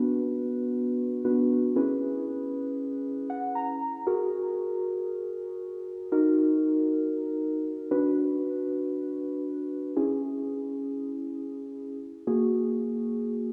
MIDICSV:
0, 0, Header, 1, 2, 480
1, 0, Start_track
1, 0, Tempo, 512821
1, 1887, Time_signature, 4, 2, 24, 8
1, 12661, End_track
2, 0, Start_track
2, 0, Title_t, "Synth keys"
2, 0, Program_c, 0, 88
2, 0, Note_on_c, 0, 59, 80
2, 0, Note_on_c, 0, 62, 69
2, 0, Note_on_c, 0, 66, 71
2, 0, Note_on_c, 0, 71, 84
2, 1138, Note_off_c, 0, 59, 0
2, 1138, Note_off_c, 0, 62, 0
2, 1138, Note_off_c, 0, 66, 0
2, 1138, Note_off_c, 0, 71, 0
2, 1168, Note_on_c, 0, 62, 55
2, 1168, Note_on_c, 0, 66, 55
2, 1168, Note_on_c, 0, 71, 68
2, 1169, Note_on_c, 0, 59, 63
2, 1637, Note_off_c, 0, 71, 0
2, 1647, Note_off_c, 0, 62, 0
2, 1648, Note_off_c, 0, 59, 0
2, 1648, Note_off_c, 0, 66, 0
2, 1648, Note_on_c, 0, 64, 70
2, 1648, Note_on_c, 0, 68, 74
2, 1649, Note_on_c, 0, 61, 78
2, 1649, Note_on_c, 0, 71, 86
2, 3086, Note_on_c, 0, 78, 74
2, 3310, Note_off_c, 0, 78, 0
2, 3326, Note_on_c, 0, 82, 74
2, 3530, Note_off_c, 0, 61, 0
2, 3530, Note_off_c, 0, 64, 0
2, 3530, Note_off_c, 0, 68, 0
2, 3530, Note_off_c, 0, 71, 0
2, 3773, Note_off_c, 0, 82, 0
2, 3806, Note_on_c, 0, 68, 67
2, 3807, Note_on_c, 0, 66, 73
2, 3807, Note_on_c, 0, 70, 81
2, 5689, Note_off_c, 0, 66, 0
2, 5689, Note_off_c, 0, 68, 0
2, 5689, Note_off_c, 0, 70, 0
2, 5728, Note_on_c, 0, 63, 71
2, 5728, Note_on_c, 0, 66, 69
2, 5728, Note_on_c, 0, 70, 82
2, 7374, Note_off_c, 0, 63, 0
2, 7374, Note_off_c, 0, 66, 0
2, 7374, Note_off_c, 0, 70, 0
2, 7406, Note_on_c, 0, 62, 74
2, 7406, Note_on_c, 0, 66, 67
2, 7406, Note_on_c, 0, 71, 84
2, 9289, Note_off_c, 0, 62, 0
2, 9289, Note_off_c, 0, 66, 0
2, 9289, Note_off_c, 0, 71, 0
2, 9326, Note_on_c, 0, 61, 74
2, 9326, Note_on_c, 0, 64, 66
2, 9326, Note_on_c, 0, 68, 80
2, 11209, Note_off_c, 0, 61, 0
2, 11209, Note_off_c, 0, 64, 0
2, 11209, Note_off_c, 0, 68, 0
2, 11486, Note_on_c, 0, 58, 73
2, 11487, Note_on_c, 0, 66, 68
2, 11487, Note_on_c, 0, 68, 79
2, 12661, Note_off_c, 0, 58, 0
2, 12661, Note_off_c, 0, 66, 0
2, 12661, Note_off_c, 0, 68, 0
2, 12661, End_track
0, 0, End_of_file